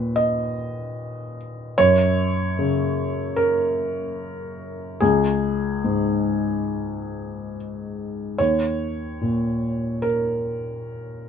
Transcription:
0.00 1.74 D#2 soft
0.00 1.78 A#2 soft
0.00 0.17 B4 medium
0.16 1.37 D#5 medium
1.78 4.97 F#2 medium
1.78 3.37 C#5 medium
2.59 5.01 C#3 soft
3.36 5.00 A#4 medium
5.00 8.35 C#2 soft
5.00 7.55 G#4 medium
5.84 8.38 G#2 soft
8.38 11.29 D#2 soft
8.38 10.04 C#5 medium
9.21 11.29 A#2 soft
10.02 11.29 A#4 medium

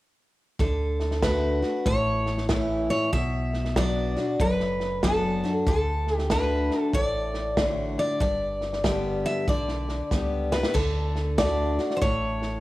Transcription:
0.59 1.63 D2 medium
0.59 1.21 D3 medium
0.59 1.25 A4 medium
0.59 kick medium
0.59 snare soft
1.00 snare soft
1.11 snare soft
1.22 1.62 D3 soft
1.22 1.62 A3 medium
1.22 1.62 D4 medium
1.22 1.61 F#4 medium
1.22 1.88 B4 medium
1.22 kick medium
1.22 snare medium
1.22 hi-hat pedal medium
1.62 1.86 D4 soft
1.62 1.85 F#4 soft
1.62 snare soft
1.85 2.89 A1 medium
1.85 3.08 A2 medium
1.85 2.46 C#5 medium
1.85 kick medium
1.85 snare soft
2.26 snare soft
2.37 snare soft
2.49 3.10 E3 medium
2.49 3.11 A3 medium
2.49 3.11 C#4 medium
2.49 3.11 E4 medium
2.49 kick medium
2.49 snare medium
2.49 hi-hat pedal medium
2.90 3.13 C#5 medium
2.90 snare soft
3.13 4.16 B1 medium
3.13 4.35 B2 medium
3.13 3.77 E5 medium
3.13 kick medium
3.13 snare soft
3.54 snare soft
3.65 snare soft
3.76 4.15 F#3 medium
3.76 4.16 B3 soft
3.76 4.16 D4 medium
3.76 4.15 F#4 medium
3.76 4.41 D5 medium
3.76 kick medium
3.76 snare loud
3.76 hi-hat pedal medium
4.17 4.40 D4 soft
4.17 4.39 F#4 soft
4.17 snare soft
4.40 5.43 F#1 medium
4.40 5.62 F#2 medium
4.40 5.03 B4 medium
4.40 kick medium
4.40 snare soft
4.60 snare soft
4.80 snare soft
5.03 5.42 F#3 medium
5.03 5.42 B3 soft
5.03 5.42 D4 medium
5.03 5.42 F#4 medium
5.03 5.52 A4 medium
5.03 kick medium
5.03 snare medium
5.03 hi-hat pedal medium
5.44 5.67 D4 soft
5.44 5.66 F#4 soft
5.44 snare soft
5.67 6.70 D2 medium
5.67 6.29 D3 medium
5.67 6.17 A4 medium
5.67 kick medium
5.67 snare soft
6.07 snare soft
6.17 6.31 G4 medium
6.17 snare soft
6.30 6.91 D3 medium
6.30 6.91 A3 medium
6.30 6.92 D4 medium
6.30 6.92 F#4 medium
6.30 6.80 B4 medium
6.30 kick medium
6.30 snare medium
6.30 hi-hat pedal medium
6.71 snare soft
6.80 6.94 A4 medium
6.93 7.97 A1 medium
6.93 8.16 A2 medium
6.93 7.66 D5 medium
6.93 kick medium
6.93 snare soft
7.34 snare soft
7.57 8.18 D3 medium
7.57 8.18 A3 soft
7.57 8.19 D4 medium
7.57 8.19 F#4 soft
7.57 kick medium
7.57 snare loud
7.57 hi-hat pedal medium
7.66 7.98 C#5 medium
7.98 8.20 D5 medium
7.98 snare soft
8.20 9.24 G1 medium
8.20 9.43 G2 medium
8.20 9.25 D5 medium
8.20 kick medium
8.20 snare soft
8.61 snare soft
8.73 snare soft
8.84 9.45 D3 soft
8.84 9.45 G3 medium
8.84 9.46 B3 medium
8.84 9.46 G4 medium
8.84 kick medium
8.84 snare medium
8.84 hi-hat pedal medium
9.25 9.49 E5 medium
9.25 snare soft
9.48 10.02 B1 medium
9.48 10.70 D3 medium
9.48 10.48 D5 medium
9.48 kick loud
9.48 snare soft
9.68 snare soft
9.89 snare soft
10.11 10.65 C#2 medium
10.11 10.50 G3 soft
10.11 10.50 B3 medium
10.11 10.51 G4 medium
10.11 kick medium
10.11 snare soft
10.11 hi-hat pedal medium
10.52 10.75 B3 soft
10.52 10.74 G4 medium
10.52 10.76 B4 medium
10.52 snare medium
10.63 snare medium
10.74 11.78 D2 medium
10.74 11.37 D3 medium
10.74 11.40 A4 medium
10.74 kick medium
10.74 snare soft
10.74 crash medium
11.15 snare soft
11.38 11.77 D3 medium
11.38 11.77 A3 medium
11.38 11.77 D4 medium
11.38 11.78 F#4 medium
11.38 11.96 D5 medium
11.38 kick medium
11.38 snare loud
11.38 hi-hat pedal medium
11.79 12.02 D4 soft
11.79 12.01 F#4 soft
11.79 snare soft
11.90 snare soft
11.97 12.01 C5 medium
12.01 12.60 A1 medium
12.01 12.60 A2 medium
12.01 12.60 C#5 medium
12.01 kick loud
12.01 snare soft
12.42 snare soft

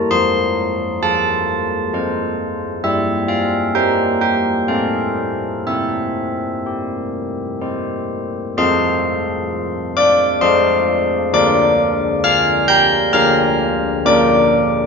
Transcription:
0.11 2.81 F3 medium
0.11 0.99 C6 loud
1.02 1.92 F4 medium
1.02 2.81 A5 loud
1.94 2.81 F4 soft
1.94 2.81 C5 medium
2.84 4.66 G3 medium
2.84 3.28 E5 medium
3.28 3.74 F5 medium
3.75 4.66 A#4 soft
3.75 4.66 C5 soft
3.75 4.20 G5 medium
4.21 4.68 G5 medium
4.68 5.64 A3 soft
4.68 5.64 A4 soft
4.68 4.70 C5 soft
4.68 5.64 C5 soft
4.68 5.63 F5 medium
5.67 8.53 C4 soft
5.67 8.05 E5 medium
6.66 7.60 G4 soft
7.61 8.53 G4 soft
7.61 8.53 C5 soft
8.57 10.38 F3 medium
8.57 10.38 F4 soft
8.57 10.38 A4 soft
8.57 9.92 C5 medium
8.57 9.92 C6 medium
9.97 10.39 D5 medium
9.97 10.40 D6 loud
10.41 11.30 F3 medium
10.41 11.29 F4 medium
10.41 11.30 A4 soft
10.41 11.29 C5 medium
10.41 11.29 C6 loud
11.33 13.10 D3 medium
11.33 13.11 F4 soft
11.33 13.10 A#4 medium
11.33 12.20 D5 medium
11.33 12.20 D6 loud
12.24 12.66 F5 loud
12.24 12.67 F6 loud
12.68 13.12 G5 medium
12.68 13.12 G6 loud
13.13 14.02 D3 medium
13.13 14.01 F4 medium
13.13 14.02 A#4 medium
13.13 14.01 F5 medium
13.13 14.00 F6 loud
14.05 14.86 A#3 medium
14.05 14.86 F4 medium
14.05 14.86 A#4 medium
14.05 14.86 D5 medium
14.05 14.86 D6 loud

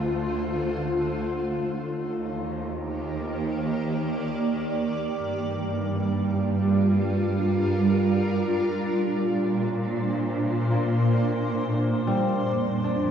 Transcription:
0.00 1.58 D2 medium
0.00 1.62 D3 medium
0.00 1.62 A3 medium
0.00 2.74 F4 medium
0.00 3.05 C5 medium
1.62 5.16 D#2 medium
1.62 5.20 D#3 medium
2.09 6.61 A#3 medium
2.19 6.65 G4 medium
3.23 6.65 D5 medium
5.20 8.81 G2 medium
5.20 8.85 G3 medium
5.35 12.49 D4 medium
6.14 10.31 F4 medium
6.82 10.31 A#4 medium
8.85 12.45 A#2 medium
8.85 12.49 A#2 medium
9.17 12.50 A#3 medium
9.23 13.11 C5 medium
10.72 13.11 A#3 soft
12.07 12.55 G3 medium
12.49 13.11 F2 medium
12.49 13.11 F3 medium
12.73 13.11 D#3 medium
12.84 13.11 D4 soft
13.01 13.11 C4 medium

